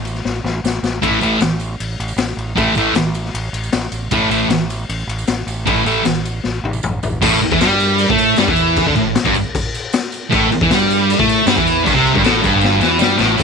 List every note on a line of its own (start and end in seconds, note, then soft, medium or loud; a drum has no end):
0.00 0.20 A1 medium
0.05 ride medium
0.05 tambourine medium
0.15 snare soft
0.15 tambourine soft
0.25 0.42 A1 medium
0.25 snare medium
0.25 tambourine soft
0.35 tambourine soft
0.44 0.61 A1 medium
0.44 snare medium
0.64 0.80 A1 medium
0.64 snare medium
0.64 tambourine medium
0.74 tambourine soft
0.83 1.00 A1 medium
0.83 snare medium
0.83 tambourine medium
1.02 1.19 A1 medium
1.02 1.18 A2 medium
1.02 1.18 E3 medium
1.02 1.18 A3 medium
1.02 kick loud
1.02 ride medium
1.21 1.39 A1 medium
1.21 1.37 A2 medium
1.21 1.37 E3 medium
1.21 1.38 A3 medium
1.21 ride medium
1.21 tambourine medium
1.41 1.75 A1 medium
1.41 snare loud
1.41 ride medium
1.41 tambourine loud
1.49 tambourine soft
1.60 ride medium
1.60 tambourine medium
1.80 1.97 A1 medium
1.80 ride medium
1.89 tambourine soft
2.00 2.16 A1 medium
2.00 ride medium
2.08 tambourine medium
2.16 2.34 A1 medium
2.16 snare loud
2.16 ride medium
2.16 tambourine medium
2.37 2.54 A1 medium
2.37 ride medium
2.56 2.74 A1 loud
2.56 2.72 A2 medium
2.56 2.73 E3 loud
2.56 2.73 A3 medium
2.56 kick loud
2.56 ride medium
2.75 2.93 A1 medium
2.75 2.92 A2 medium
2.75 2.93 E3 loud
2.75 2.93 A3 loud
2.75 ride medium
2.75 tambourine medium
2.95 3.29 A1 medium
2.95 snare loud
2.95 ride loud
2.95 tambourine medium
3.06 snare soft
3.15 ride medium
3.15 tambourine medium
3.25 snare soft
3.34 3.51 A1 loud
3.34 ride medium
3.44 tambourine soft
3.53 3.70 A1 medium
3.53 ride medium
3.64 tambourine medium
3.73 3.90 A1 medium
3.73 snare loud
3.73 ride loud
3.73 tambourine loud
3.92 4.09 A1 medium
3.92 ride medium
3.92 tambourine medium
4.11 4.29 A1 loud
4.11 4.28 A2 medium
4.11 4.28 E3 medium
4.11 4.29 A3 loud
4.11 kick loud
4.11 ride loud
4.30 4.48 A1 medium
4.30 4.47 A2 medium
4.30 4.47 E3 loud
4.30 4.48 A3 loud
4.30 ride medium
4.30 tambourine medium
4.48 4.83 A1 medium
4.48 snare loud
4.48 ride loud
4.48 tambourine medium
4.70 ride medium
4.70 tambourine medium
4.89 5.07 A1 medium
4.89 ride medium
5.00 tambourine soft
5.07 5.25 A1 medium
5.07 ride medium
5.18 tambourine medium
5.27 5.45 A1 medium
5.27 snare loud
5.27 ride medium
5.27 tambourine medium
5.47 5.64 A1 medium
5.47 ride medium
5.47 tambourine medium
5.66 5.85 A1 medium
5.66 5.82 A2 medium
5.66 5.83 E3 loud
5.66 5.83 A3 medium
5.66 kick loud
5.66 ride medium
5.76 tambourine soft
5.85 6.03 A1 medium
5.85 6.02 A2 medium
5.85 6.02 E3 medium
5.85 6.03 A3 loud
5.85 ride medium
5.85 tambourine medium
6.05 6.40 A1 medium
6.05 snare loud
6.05 ride medium
6.05 tambourine loud
6.16 snare soft
6.16 tambourine soft
6.25 ride medium
6.25 tambourine medium
6.44 6.62 A1 medium
6.44 snare medium
6.44 tambourine soft
6.54 tambourine soft
6.63 6.81 A1 medium
6.63 high tom medium
6.73 tambourine medium
6.83 7.01 A1 medium
6.83 mid tom medium
6.83 tambourine medium
7.03 7.20 A1 medium
7.03 floor tom medium
7.03 tambourine medium
7.22 7.40 A1 loud
7.22 7.41 A2 loud
7.22 kick loud
7.22 crash loud
7.22 crash medium
7.42 muted distorted electric guitar stroke medium
7.42 muted fingered electric bass stroke soft
7.42 crash medium
7.52 7.61 E2 medium
7.52 7.61 E3 loud
7.52 kick loud
7.61 8.06 G2 medium
7.61 8.09 G3 loud
7.61 snare loud
7.61 tambourine medium
7.61 crash medium
7.80 tambourine medium
7.80 crash medium
7.98 tambourine medium
7.98 crash medium
8.09 8.37 A2 loud
8.09 8.38 A3 loud
8.09 kick loud
8.18 tambourine medium
8.18 crash medium
8.36 8.47 G2 loud
8.36 8.48 G3 loud
8.36 snare loud
8.36 tambourine medium
8.36 crash medium
8.47 8.84 E2 loud
8.47 8.86 E3 medium
8.47 kick loud
8.56 tambourine medium
8.56 crash medium
8.76 kick loud
8.76 crash medium
8.87 8.96 D2 medium
8.87 8.96 D3 loud
8.87 kick medium
8.95 9.15 A1 medium
8.95 9.12 A2 medium
8.95 crash medium
9.15 snare loud
9.15 tambourine medium
9.15 crash medium
9.25 9.35 G1 loud
9.25 9.34 G2 loud
9.25 kick loud
9.34 tambourine medium
9.34 crash medium
9.55 kick loud
9.55 tambourine medium
9.55 crash medium
9.74 tambourine medium
9.74 crash medium
9.92 snare loud
9.92 tambourine medium
9.92 crash medium
10.12 tambourine medium
10.12 crash medium
10.30 10.50 A1 loud
10.30 10.50 A2 loud
10.30 kick loud
10.30 crash medium
10.51 muted distorted electric guitar stroke medium
10.51 muted fingered electric bass stroke soft
10.51 crash medium
10.61 10.70 E2 loud
10.61 10.70 E3 loud
10.61 kick loud
10.71 11.15 G2 loud
10.71 11.18 G3 loud
10.71 snare loud
10.71 tambourine loud
10.71 crash medium
10.90 tambourine medium
10.90 crash medium
11.10 tambourine medium
11.10 crash medium
11.19 11.45 A2 loud
11.19 11.47 A3 loud
11.19 kick loud
11.29 tambourine medium
11.29 crash medium
11.46 11.55 G2 loud
11.46 11.56 G3 loud
11.46 snare loud
11.46 tambourine loud
11.46 crash medium
11.55 11.84 E2 loud
11.55 11.84 E3 loud
11.55 kick loud
11.67 tambourine medium
11.67 crash medium
11.83 11.94 G1 loud
11.83 11.93 G2 loud
11.83 kick loud
11.83 crash medium
11.87 tambourine soft
11.94 12.13 C2 medium
11.94 12.13 C3 loud
12.07 crash medium
12.13 12.21 G1 loud
12.13 12.23 G2 loud
12.13 kick loud
12.22 12.41 A1 medium
12.22 12.42 A2 loud
12.22 tambourine loud
12.26 snare loud
12.26 crash medium
12.42 12.79 G1 medium
12.42 12.80 G2 loud
12.42 kick loud
12.42 tambourine medium
12.42 crash medium
12.61 snare medium
12.61 tambourine medium
12.79 12.99 E2 medium
12.79 12.99 E3 loud
12.79 snare medium
12.79 tambourine medium
12.98 13.18 G2 medium
12.98 13.18 G3 medium
12.98 snare loud
12.98 tambourine loud
13.16 13.37 A1 medium
13.16 13.36 A2 loud
13.16 tambourine medium
13.21 snare medium
13.37 13.43 A1 loud
13.37 13.43 A2 loud
13.37 kick loud
13.37 crash loud
13.37 tambourine medium
13.37 crash medium